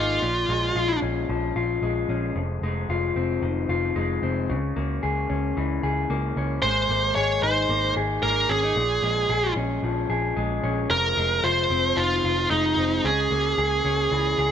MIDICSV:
0, 0, Header, 1, 4, 480
1, 0, Start_track
1, 0, Tempo, 534283
1, 199, Time_signature, 4, 2, 24, 8
1, 13040, End_track
2, 0, Start_track
2, 0, Title_t, "Lead electric guitar"
2, 0, Program_c, 0, 29
2, 0, Note_on_c, 0, 65, 83
2, 884, Note_off_c, 0, 65, 0
2, 5951, Note_on_c, 0, 72, 86
2, 6424, Note_off_c, 0, 72, 0
2, 6428, Note_on_c, 0, 73, 90
2, 6673, Note_off_c, 0, 73, 0
2, 6677, Note_on_c, 0, 72, 88
2, 7122, Note_off_c, 0, 72, 0
2, 7391, Note_on_c, 0, 70, 84
2, 7631, Note_on_c, 0, 68, 88
2, 7640, Note_off_c, 0, 70, 0
2, 8557, Note_off_c, 0, 68, 0
2, 9798, Note_on_c, 0, 70, 96
2, 10275, Note_on_c, 0, 72, 92
2, 10292, Note_off_c, 0, 70, 0
2, 10753, Note_on_c, 0, 65, 84
2, 10771, Note_off_c, 0, 72, 0
2, 11232, Note_off_c, 0, 65, 0
2, 11236, Note_on_c, 0, 63, 73
2, 11723, Note_on_c, 0, 68, 82
2, 11731, Note_off_c, 0, 63, 0
2, 13040, Note_off_c, 0, 68, 0
2, 13040, End_track
3, 0, Start_track
3, 0, Title_t, "Clean electric guitar"
3, 0, Program_c, 1, 27
3, 0, Note_on_c, 1, 56, 72
3, 0, Note_on_c, 1, 58, 61
3, 0, Note_on_c, 1, 63, 55
3, 0, Note_on_c, 1, 68, 56
3, 198, Note_on_c, 1, 46, 73
3, 225, Note_off_c, 1, 56, 0
3, 251, Note_off_c, 1, 63, 0
3, 438, Note_off_c, 1, 58, 0
3, 442, Note_on_c, 1, 56, 59
3, 676, Note_off_c, 1, 68, 0
3, 679, Note_on_c, 1, 65, 61
3, 917, Note_on_c, 1, 61, 55
3, 1159, Note_on_c, 1, 53, 60
3, 1398, Note_off_c, 1, 65, 0
3, 1402, Note_on_c, 1, 65, 59
3, 1638, Note_off_c, 1, 56, 0
3, 1641, Note_on_c, 1, 56, 59
3, 1869, Note_off_c, 1, 61, 0
3, 1880, Note_on_c, 1, 61, 56
3, 2115, Note_off_c, 1, 46, 0
3, 2118, Note_on_c, 1, 41, 74
3, 2166, Note_off_c, 1, 61, 0
3, 2362, Note_off_c, 1, 56, 0
3, 2366, Note_on_c, 1, 56, 57
3, 2599, Note_off_c, 1, 65, 0
3, 2603, Note_on_c, 1, 65, 65
3, 2841, Note_on_c, 1, 60, 53
3, 3075, Note_off_c, 1, 53, 0
3, 3079, Note_on_c, 1, 51, 59
3, 3308, Note_off_c, 1, 65, 0
3, 3318, Note_on_c, 1, 65, 61
3, 3553, Note_off_c, 1, 56, 0
3, 3557, Note_on_c, 1, 56, 64
3, 3789, Note_off_c, 1, 60, 0
3, 3799, Note_on_c, 1, 60, 55
3, 4034, Note_off_c, 1, 41, 0
3, 4039, Note_on_c, 1, 49, 75
3, 4084, Note_off_c, 1, 51, 0
3, 4084, Note_off_c, 1, 60, 0
3, 4084, Note_off_c, 1, 65, 0
3, 4275, Note_off_c, 1, 56, 0
3, 4279, Note_on_c, 1, 58, 57
3, 4517, Note_on_c, 1, 68, 62
3, 4758, Note_on_c, 1, 61, 54
3, 5005, Note_on_c, 1, 52, 57
3, 5237, Note_off_c, 1, 68, 0
3, 5240, Note_on_c, 1, 68, 55
3, 5477, Note_off_c, 1, 58, 0
3, 5480, Note_on_c, 1, 58, 61
3, 5714, Note_off_c, 1, 61, 0
3, 5725, Note_on_c, 1, 61, 53
3, 5956, Note_off_c, 1, 49, 0
3, 5959, Note_off_c, 1, 52, 0
3, 5965, Note_on_c, 1, 56, 72
3, 6007, Note_off_c, 1, 61, 0
3, 6195, Note_off_c, 1, 58, 0
3, 6199, Note_on_c, 1, 58, 52
3, 6226, Note_off_c, 1, 68, 0
3, 6440, Note_on_c, 1, 68, 60
3, 6680, Note_on_c, 1, 63, 53
3, 6914, Note_off_c, 1, 58, 0
3, 6917, Note_on_c, 1, 58, 56
3, 7154, Note_off_c, 1, 68, 0
3, 7157, Note_on_c, 1, 68, 62
3, 7396, Note_off_c, 1, 58, 0
3, 7400, Note_on_c, 1, 58, 58
3, 7632, Note_off_c, 1, 63, 0
3, 7636, Note_on_c, 1, 61, 54
3, 7756, Note_off_c, 1, 61, 0
3, 7756, Note_on_c, 1, 63, 44
3, 7872, Note_on_c, 1, 46, 73
3, 7899, Note_off_c, 1, 56, 0
3, 7923, Note_off_c, 1, 63, 0
3, 8113, Note_off_c, 1, 58, 0
3, 8116, Note_on_c, 1, 56, 55
3, 8350, Note_off_c, 1, 68, 0
3, 8353, Note_on_c, 1, 68, 60
3, 8596, Note_on_c, 1, 61, 53
3, 8838, Note_on_c, 1, 53, 57
3, 9068, Note_off_c, 1, 68, 0
3, 9071, Note_on_c, 1, 68, 56
3, 9310, Note_off_c, 1, 56, 0
3, 9313, Note_on_c, 1, 56, 63
3, 9544, Note_off_c, 1, 61, 0
3, 9555, Note_on_c, 1, 61, 60
3, 9791, Note_on_c, 1, 41, 74
3, 9795, Note_off_c, 1, 46, 0
3, 9843, Note_off_c, 1, 61, 0
3, 10033, Note_off_c, 1, 56, 0
3, 10037, Note_on_c, 1, 56, 56
3, 10271, Note_off_c, 1, 68, 0
3, 10274, Note_on_c, 1, 65, 60
3, 10516, Note_on_c, 1, 60, 57
3, 10751, Note_off_c, 1, 53, 0
3, 10755, Note_on_c, 1, 51, 58
3, 10993, Note_off_c, 1, 65, 0
3, 11004, Note_on_c, 1, 65, 57
3, 11232, Note_off_c, 1, 56, 0
3, 11236, Note_on_c, 1, 56, 63
3, 11473, Note_off_c, 1, 60, 0
3, 11484, Note_on_c, 1, 60, 57
3, 11715, Note_off_c, 1, 41, 0
3, 11718, Note_on_c, 1, 49, 74
3, 11765, Note_off_c, 1, 51, 0
3, 11769, Note_off_c, 1, 60, 0
3, 11769, Note_off_c, 1, 65, 0
3, 11957, Note_off_c, 1, 56, 0
3, 11960, Note_on_c, 1, 58, 58
3, 12202, Note_on_c, 1, 68, 65
3, 12441, Note_on_c, 1, 61, 56
3, 12683, Note_on_c, 1, 52, 57
3, 12924, Note_off_c, 1, 68, 0
3, 12927, Note_on_c, 1, 68, 57
3, 13040, Note_off_c, 1, 49, 0
3, 13040, Note_off_c, 1, 52, 0
3, 13040, Note_off_c, 1, 58, 0
3, 13040, Note_off_c, 1, 61, 0
3, 13040, Note_off_c, 1, 68, 0
3, 13040, End_track
4, 0, Start_track
4, 0, Title_t, "Picked electric bass"
4, 0, Program_c, 2, 34
4, 0, Note_on_c, 2, 32, 98
4, 157, Note_off_c, 2, 32, 0
4, 203, Note_on_c, 2, 34, 88
4, 398, Note_off_c, 2, 34, 0
4, 437, Note_on_c, 2, 34, 86
4, 635, Note_off_c, 2, 34, 0
4, 675, Note_on_c, 2, 34, 83
4, 873, Note_off_c, 2, 34, 0
4, 920, Note_on_c, 2, 34, 81
4, 1116, Note_off_c, 2, 34, 0
4, 1162, Note_on_c, 2, 34, 101
4, 1356, Note_off_c, 2, 34, 0
4, 1400, Note_on_c, 2, 34, 89
4, 1595, Note_off_c, 2, 34, 0
4, 1635, Note_on_c, 2, 34, 82
4, 1832, Note_off_c, 2, 34, 0
4, 1876, Note_on_c, 2, 34, 85
4, 2073, Note_off_c, 2, 34, 0
4, 2117, Note_on_c, 2, 29, 91
4, 2313, Note_off_c, 2, 29, 0
4, 2354, Note_on_c, 2, 29, 85
4, 2551, Note_off_c, 2, 29, 0
4, 2598, Note_on_c, 2, 29, 79
4, 2793, Note_off_c, 2, 29, 0
4, 2837, Note_on_c, 2, 29, 88
4, 3033, Note_off_c, 2, 29, 0
4, 3075, Note_on_c, 2, 29, 86
4, 3272, Note_off_c, 2, 29, 0
4, 3315, Note_on_c, 2, 29, 92
4, 3511, Note_off_c, 2, 29, 0
4, 3559, Note_on_c, 2, 29, 80
4, 3754, Note_off_c, 2, 29, 0
4, 3795, Note_on_c, 2, 29, 94
4, 4040, Note_on_c, 2, 37, 86
4, 4054, Note_off_c, 2, 29, 0
4, 4234, Note_off_c, 2, 37, 0
4, 4282, Note_on_c, 2, 37, 80
4, 4475, Note_off_c, 2, 37, 0
4, 4524, Note_on_c, 2, 37, 84
4, 4716, Note_off_c, 2, 37, 0
4, 4763, Note_on_c, 2, 37, 90
4, 4955, Note_off_c, 2, 37, 0
4, 5004, Note_on_c, 2, 37, 80
4, 5196, Note_off_c, 2, 37, 0
4, 5239, Note_on_c, 2, 37, 90
4, 5433, Note_off_c, 2, 37, 0
4, 5477, Note_on_c, 2, 37, 86
4, 5672, Note_off_c, 2, 37, 0
4, 5717, Note_on_c, 2, 37, 88
4, 5912, Note_off_c, 2, 37, 0
4, 5954, Note_on_c, 2, 32, 90
4, 6151, Note_off_c, 2, 32, 0
4, 6193, Note_on_c, 2, 32, 88
4, 6390, Note_off_c, 2, 32, 0
4, 6435, Note_on_c, 2, 32, 87
4, 6631, Note_off_c, 2, 32, 0
4, 6672, Note_on_c, 2, 32, 84
4, 6870, Note_off_c, 2, 32, 0
4, 6911, Note_on_c, 2, 32, 96
4, 7109, Note_off_c, 2, 32, 0
4, 7151, Note_on_c, 2, 32, 95
4, 7349, Note_off_c, 2, 32, 0
4, 7391, Note_on_c, 2, 32, 85
4, 7589, Note_off_c, 2, 32, 0
4, 7631, Note_on_c, 2, 32, 87
4, 7829, Note_off_c, 2, 32, 0
4, 7871, Note_on_c, 2, 34, 82
4, 8069, Note_off_c, 2, 34, 0
4, 8110, Note_on_c, 2, 34, 86
4, 8309, Note_off_c, 2, 34, 0
4, 8349, Note_on_c, 2, 34, 97
4, 8548, Note_off_c, 2, 34, 0
4, 8590, Note_on_c, 2, 34, 76
4, 8789, Note_off_c, 2, 34, 0
4, 8830, Note_on_c, 2, 34, 105
4, 9029, Note_off_c, 2, 34, 0
4, 9069, Note_on_c, 2, 34, 86
4, 9268, Note_off_c, 2, 34, 0
4, 9316, Note_on_c, 2, 34, 84
4, 9513, Note_off_c, 2, 34, 0
4, 9554, Note_on_c, 2, 34, 91
4, 9752, Note_off_c, 2, 34, 0
4, 9795, Note_on_c, 2, 29, 95
4, 9992, Note_off_c, 2, 29, 0
4, 10038, Note_on_c, 2, 29, 83
4, 10234, Note_off_c, 2, 29, 0
4, 10276, Note_on_c, 2, 29, 78
4, 10473, Note_off_c, 2, 29, 0
4, 10512, Note_on_c, 2, 29, 101
4, 10711, Note_off_c, 2, 29, 0
4, 10755, Note_on_c, 2, 29, 90
4, 10953, Note_off_c, 2, 29, 0
4, 10999, Note_on_c, 2, 29, 81
4, 11195, Note_off_c, 2, 29, 0
4, 11236, Note_on_c, 2, 29, 87
4, 11433, Note_off_c, 2, 29, 0
4, 11473, Note_on_c, 2, 29, 89
4, 11672, Note_off_c, 2, 29, 0
4, 11718, Note_on_c, 2, 37, 92
4, 11915, Note_off_c, 2, 37, 0
4, 11955, Note_on_c, 2, 37, 79
4, 12153, Note_off_c, 2, 37, 0
4, 12199, Note_on_c, 2, 37, 87
4, 12396, Note_off_c, 2, 37, 0
4, 12439, Note_on_c, 2, 37, 91
4, 12636, Note_off_c, 2, 37, 0
4, 12681, Note_on_c, 2, 37, 86
4, 12877, Note_off_c, 2, 37, 0
4, 12922, Note_on_c, 2, 37, 82
4, 13040, Note_off_c, 2, 37, 0
4, 13040, End_track
0, 0, End_of_file